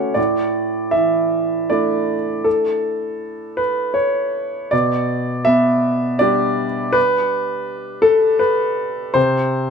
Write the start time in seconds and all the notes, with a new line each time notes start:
Already playing: A3 C#4 F#4 B4 C#5
0.14 A2 D5
0.91 E3 E5
1.70 A3 D4 E4 D5
2.44 A4
3.57 B4
3.94 C#5
4.71 B2 D5
5.45 B3 E5
6.19 G3 D4 G4 D5
6.93 B4
8.02 A4
8.39 B4
9.14 C3 C5